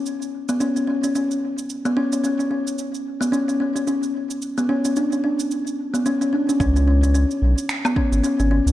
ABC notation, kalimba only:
X:1
M:4/4
L:1/16
Q:"Swing 16ths" 1/4=110
K:none
V:1 name="Kalimba"
^C2 z B, C C C C C4 z B, C C | ^C C C4 z B, C C C C C4 | z B, ^C C D C D4 z B, C C D C | ^C C C C C4 z B, C C C C C2 |]